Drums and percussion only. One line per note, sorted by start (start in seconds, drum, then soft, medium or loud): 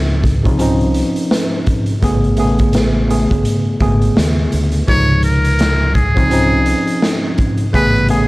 0.24 kick loud
0.24 snare soft
0.24 closed hi-hat medium
0.45 kick medium
0.45 closed hi-hat medium
0.59 closed hi-hat medium
0.80 closed hi-hat soft
0.94 closed hi-hat medium
1.16 closed hi-hat medium
1.31 snare loud
1.31 closed hi-hat loud
1.66 kick medium
1.66 closed hi-hat medium
1.86 closed hi-hat medium
2.02 kick loud
2.02 closed hi-hat medium
2.24 closed hi-hat soft
2.37 closed hi-hat medium
2.59 kick medium
2.59 closed hi-hat medium
2.73 snare loud
2.73 closed hi-hat medium
3.10 closed hi-hat medium
3.31 kick medium
3.31 closed hi-hat medium
3.45 closed hi-hat medium
3.80 kick loud
3.80 closed hi-hat medium
4.02 closed hi-hat medium
4.17 snare loud
4.17 closed hi-hat loud
4.52 closed hi-hat medium
4.72 closed hi-hat soft
4.88 kick loud
4.88 closed hi-hat medium
5.23 closed hi-hat medium
5.44 closed hi-hat medium
5.59 snare loud
5.59 closed hi-hat medium
5.95 kick loud
5.95 closed hi-hat medium
6.17 kick medium
6.17 closed hi-hat medium
6.31 closed hi-hat medium
6.66 closed hi-hat medium
6.87 closed hi-hat medium
7.02 snare loud
7.02 closed hi-hat loud
7.38 kick medium
7.38 closed hi-hat medium
7.57 closed hi-hat medium
7.74 kick loud
7.74 closed hi-hat medium
7.95 closed hi-hat soft
8.08 closed hi-hat medium